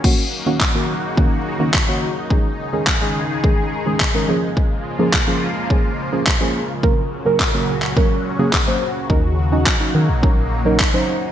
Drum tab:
CC |x---------------|----------------|----------------|----------------|
CP |----x-------x---|----x-------x---|----x-------x---|----x--x----x---|
BD |o---o---o---o---|o---o---o---o---|o---o---o---o---|o---o---o---o---|

CC |----------------|
CP |----x-------x---|
BD |o---o---o---o---|